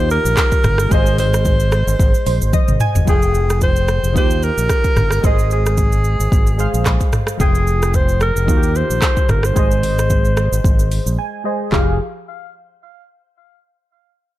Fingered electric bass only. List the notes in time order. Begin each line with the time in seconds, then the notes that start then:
Already playing: D#2
0.25 A#1
0.64 G1
0.91 G#1
1.87 G#1
1.99 G#1
2.26 A#1
2.41 G#1
2.68 G#1
2.95 G1
3.07 F1
4.03 F1
4.16 D#2
4.57 A#1
4.97 G1
5.24 G#1
6.20 G#1
6.32 G#1
6.74 A#1
7.40 F1
8.36 F1
8.48 D#2
8.90 A#1
9.29 G1
9.56 G#1
10.52 G#1
10.64 G#1
11.06 A#1
11.72 F1